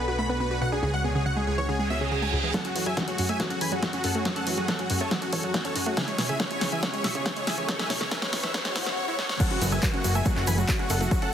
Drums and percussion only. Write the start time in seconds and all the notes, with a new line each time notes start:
2.54 kick, snare, closed hi-hat
2.65 closed hi-hat
2.76 open hi-hat
2.86 closed hi-hat
2.97 kick, snare, closed hi-hat
3.08 closed hi-hat
3.18 open hi-hat
3.29 closed hi-hat
3.40 kick, snare, closed hi-hat
3.50 closed hi-hat
3.61 open hi-hat
3.72 closed hi-hat
3.83 kick, snare, closed hi-hat
3.93 closed hi-hat
4.04 open hi-hat
4.15 closed hi-hat
4.25 kick, snare, closed hi-hat
4.36 closed hi-hat
4.47 open hi-hat
4.58 closed hi-hat
4.68 kick, snare, closed hi-hat
4.79 closed hi-hat
4.90 open hi-hat
5.01 closed hi-hat
5.11 kick, snare, closed hi-hat
5.22 closed hi-hat
5.33 kick, open hi-hat
5.43 closed hi-hat
5.54 kick, snare, closed hi-hat
5.65 closed hi-hat
5.76 open hi-hat
5.97 kick, snare, closed hi-hat
6.08 closed hi-hat
6.18 snare, open hi-hat
6.29 closed hi-hat
6.40 kick, snare, closed hi-hat
6.51 closed hi-hat
6.61 snare, open hi-hat
6.72 closed hi-hat
6.83 kick, snare, closed hi-hat
6.94 closed hi-hat
7.04 snare, open hi-hat
7.15 closed hi-hat
7.26 kick, snare, closed hi-hat
7.37 closed hi-hat
7.47 snare, open hi-hat
7.58 closed hi-hat
7.68 kick, snare, closed hi-hat
7.79 snare, closed hi-hat
7.90 snare, open hi-hat
8.01 snare, closed hi-hat
8.11 kick, snare, closed hi-hat
8.22 snare, closed hi-hat
8.33 snare, open hi-hat
8.44 snare, closed hi-hat
8.54 kick, snare, closed hi-hat
8.65 snare, closed hi-hat
8.76 kick, snare, open hi-hat
8.86 snare
9.19 snare
9.29 snare
9.40 kick, closed hi-hat, crash, shaker
9.51 closed hi-hat
9.62 open hi-hat, shaker
9.72 closed hi-hat, shaker
9.83 kick, clap, closed hi-hat, shaker
9.94 closed hi-hat
10.04 open hi-hat, shaker
10.14 closed hi-hat, shaker
10.25 kick, closed hi-hat, shaker
10.37 clap, closed hi-hat
10.47 open hi-hat, shaker
10.58 closed hi-hat, shaker
10.68 kick, clap, closed hi-hat, shaker
10.79 closed hi-hat
10.90 open hi-hat, shaker
11.01 closed hi-hat, shaker
11.11 kick, closed hi-hat, shaker
11.22 closed hi-hat